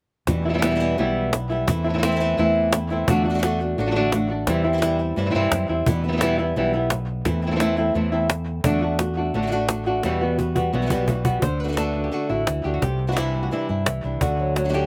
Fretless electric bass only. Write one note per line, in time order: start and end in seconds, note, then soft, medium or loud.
0.28 0.94 E2 medium
0.98 1.64 B1 medium
1.68 2.34 E2 medium
2.38 3.04 E2 medium
3.08 3.74 E2 loud
3.78 4.44 A1 medium
4.48 5.13 E2 loud
5.17 5.33 G2 medium
5.34 5.50 G2 medium
5.52 5.68 F#2 medium
5.69 5.85 E2 medium
5.87 6.52 E2 medium
6.56 7.22 B1 medium
7.26 7.91 E2 loud
7.95 8.61 E2 medium
8.64 9.30 E2 loud
9.34 10.00 A1 medium
10.04 10.69 E2 medium
10.74 11.39 B1 medium
11.43 12.09 D2 medium
12.30 12.46 A1 medium
12.47 12.64 D2 medium
12.65 12.81 D2 medium
12.82 13.48 C2 medium
13.69 13.85 G2 medium
13.87 14.03 C2 medium
14.04 14.20 C2 medium
14.21 14.86 D2 medium